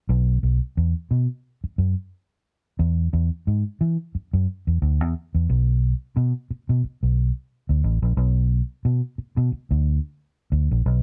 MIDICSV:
0, 0, Header, 1, 3, 480
1, 0, Start_track
1, 0, Tempo, 672646
1, 61, Time_signature, 4, 2, 24, 8
1, 7868, End_track
2, 0, Start_track
2, 0, Title_t, "Fingered electric bass"
2, 0, Program_c, 0, 33
2, 65, Note_on_c, 0, 35, 116
2, 262, Note_off_c, 0, 35, 0
2, 306, Note_on_c, 0, 35, 85
2, 416, Note_off_c, 0, 35, 0
2, 552, Note_on_c, 0, 40, 90
2, 660, Note_off_c, 0, 40, 0
2, 791, Note_on_c, 0, 47, 75
2, 900, Note_off_c, 0, 47, 0
2, 1272, Note_on_c, 0, 42, 80
2, 1381, Note_off_c, 0, 42, 0
2, 1993, Note_on_c, 0, 40, 105
2, 2191, Note_off_c, 0, 40, 0
2, 2236, Note_on_c, 0, 40, 101
2, 2345, Note_off_c, 0, 40, 0
2, 2478, Note_on_c, 0, 44, 87
2, 2587, Note_off_c, 0, 44, 0
2, 2717, Note_on_c, 0, 52, 95
2, 2827, Note_off_c, 0, 52, 0
2, 3093, Note_on_c, 0, 42, 83
2, 3178, Note_off_c, 0, 42, 0
2, 3334, Note_on_c, 0, 40, 80
2, 3419, Note_off_c, 0, 40, 0
2, 3439, Note_on_c, 0, 38, 86
2, 3573, Note_off_c, 0, 38, 0
2, 3573, Note_on_c, 0, 40, 76
2, 3658, Note_off_c, 0, 40, 0
2, 3814, Note_on_c, 0, 40, 77
2, 3899, Note_off_c, 0, 40, 0
2, 3922, Note_on_c, 0, 35, 112
2, 4228, Note_off_c, 0, 35, 0
2, 4400, Note_on_c, 0, 47, 101
2, 4508, Note_off_c, 0, 47, 0
2, 4776, Note_on_c, 0, 47, 96
2, 4859, Note_off_c, 0, 47, 0
2, 5015, Note_on_c, 0, 35, 80
2, 5209, Note_off_c, 0, 35, 0
2, 5490, Note_on_c, 0, 38, 86
2, 5575, Note_off_c, 0, 38, 0
2, 5595, Note_on_c, 0, 33, 108
2, 5704, Note_off_c, 0, 33, 0
2, 5726, Note_on_c, 0, 34, 93
2, 5812, Note_off_c, 0, 34, 0
2, 5830, Note_on_c, 0, 35, 122
2, 6138, Note_off_c, 0, 35, 0
2, 6315, Note_on_c, 0, 47, 94
2, 6423, Note_off_c, 0, 47, 0
2, 6688, Note_on_c, 0, 47, 109
2, 6772, Note_off_c, 0, 47, 0
2, 6927, Note_on_c, 0, 38, 100
2, 7122, Note_off_c, 0, 38, 0
2, 7506, Note_on_c, 0, 38, 100
2, 7616, Note_off_c, 0, 38, 0
2, 7645, Note_on_c, 0, 34, 96
2, 7729, Note_off_c, 0, 34, 0
2, 7748, Note_on_c, 0, 35, 109
2, 7868, Note_off_c, 0, 35, 0
2, 7868, End_track
3, 0, Start_track
3, 0, Title_t, "Muted fingered electric bass strokes"
3, 1168, Note_on_c, 9, 29, 45
3, 1240, Note_off_c, 9, 29, 0
3, 2960, Note_on_c, 9, 29, 45
3, 3031, Note_off_c, 9, 29, 0
3, 4642, Note_on_c, 9, 29, 47
3, 4713, Note_off_c, 9, 29, 0
3, 4881, Note_on_c, 9, 29, 50
3, 4952, Note_off_c, 9, 29, 0
3, 6553, Note_on_c, 9, 29, 45
3, 6624, Note_off_c, 9, 29, 0
3, 6794, Note_on_c, 9, 29, 52
3, 6866, Note_off_c, 9, 29, 0
3, 7868, End_track
0, 0, End_of_file